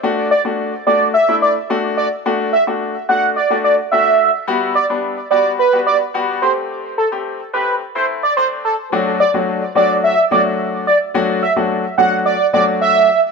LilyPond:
<<
  \new Staff \with { instrumentName = "Analog synth lead" } { \time 4/4 \key d \mixolydian \tempo 4 = 108 r8 d''16 r8. d''8 e''8 d''16 r8. d''16 r16 | r8 e''16 r8. fis''8 d''8 d''16 r16 e''8. r16 | r8 d''16 r8. d''8 b'8 d''16 r8. c''16 r16 | r8 a'16 r8. b'8 r16 c''16 r16 d''16 c''16 r16 a'16 r16 |
r8 d''16 r8. d''8 e''8 d''16 r8. d''16 r16 | r8 e''16 r8. fis''8 d''8 d''16 r16 e''8. r16 | }
  \new Staff \with { instrumentName = "Grand piano" } { \time 4/4 \key d \mixolydian <a d' fis'>8 r16 <a d' fis'>8 r16 <a d' fis'>8 r16 <a d' e'>8 r16 <a d' fis'>8. r16 | <a d' fis'>8 r16 <a d' fis'>8 r16 <a d' fis'>8 r16 <a d' fis'>8 r16 <a d' fis'>8. r16 | <g b fis'>8 r16 <g b d'>8 r16 <g b fis'>8 r16 <g b fis'>8 r16 <g b fis'>8 <a c' g'>8~ | <a c' g'>8 r16 <a c' g'>8 r16 <a c' g'>8 r16 <a c' e'>8 r16 <a c' d'>8. r16 |
<fis a d' fis'>8 r16 <fis a d' fis'>8 r16 <fis a d' fis'>8. r16 <fis a d' fis'>4 r8 | <fis a d' fis'>8 r16 <fis a d' fis'>8 r16 <fis a d' fis'>8. r16 <fis a d' fis'>4 r8 | }
>>